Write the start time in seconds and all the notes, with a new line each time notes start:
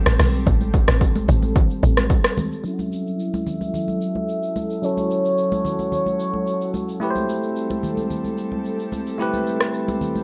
Already playing: G3 C4 A4
0.06 A1, cross-stick, shaker
0.19 B1, cross-stick, open hi-hat, high conga, low conga, shaker
0.34 shaker
0.47 A1, kick, shaker
0.61 high conga, shaker
0.74 kick, shaker
0.88 A1, cross-stick, shaker
1.01 kick, shaker
1.15 high conga, shaker
1.28 A1, low conga, shaker
1.42 high conga, shaker
1.56 kick, low conga, shaker
1.70 shaker
1.83 A1, shaker
1.97 cross-stick, high conga, shaker
2.10 kick, shaker
2.24 cross-stick, shaker
2.37 high conga, low conga, shaker
2.52 shaker
2.64 F#3 C#4 E4 A4 E5, shaker
2.68 A4
2.73 F#5
2.79 E5, high conga, shaker
2.92 shaker
3.07 shaker
3.20 shaker
3.34 high conga, shaker
3.47 low conga, shaker
3.61 high conga, shaker
3.74 low conga, shaker
3.88 high conga, shaker
4.01 shaker
4.15 high conga
4.29 shaker
4.43 shaker
4.56 high conga, shaker
4.70 shaker
4.82 F#3 C#4 E4 F#4 C#5, shaker
4.86 A4
4.97 high conga, shaker
5.11 shaker
5.25 shaker
5.38 shaker
5.52 high conga, shaker
5.65 low conga, shaker
5.79 high conga, shaker
5.92 C#5, low conga, shaker
6.06 high conga, shaker
6.20 shaker
6.34 high conga
6.47 shaker
6.61 shaker
6.74 high conga, shaker
6.88 shaker
7.00 G3 A3 C4 E4 G4 A4, shaker
7.04 B4
7.11 C5
7.15 high conga, shaker
7.29 shaker
7.43 shaker
7.56 shaker
7.70 high conga, shaker
7.83 low conga, shaker
7.97 high conga, shaker
8.10 low conga, shaker
8.24 high conga, shaker
8.38 shaker
8.52 high conga
8.65 shaker
8.79 shaker
8.92 high conga, shaker
9.06 shaker
9.18 A3 E4 G4, shaker
9.22 B4
9.33 high conga, shaker
9.47 shaker
9.61 cross-stick, shaker
9.74 shaker
9.88 high conga, shaker
10.01 low conga, shaker
10.15 high conga, shaker